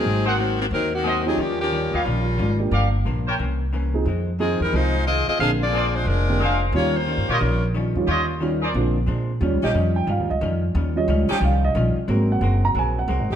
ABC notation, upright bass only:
X:1
M:4/4
L:1/8
Q:"Swing" 1/4=179
K:Ebmix
V:1 name="Upright bass" clef=bass
A,,,4 E,,4 | E,,3 =D,, B,,,2 A,,,2 | G,,,2 B,,,2 C,,4 | F,,3 _F,, C,,3 z |
B,,,4 F,,,4 | E,,2- (3E,, G,, B,, B,,,3 _F,, | E,,4 B,,,2 B,,2 | (3E,, D,, B,,, F,,2 (3G,, E,, D,, F,,2 |
E,,2 D,, z C,,2 B,,, z | A,,,2 _G,,,2 B,,,2 (3C,, A,,, G,,, |]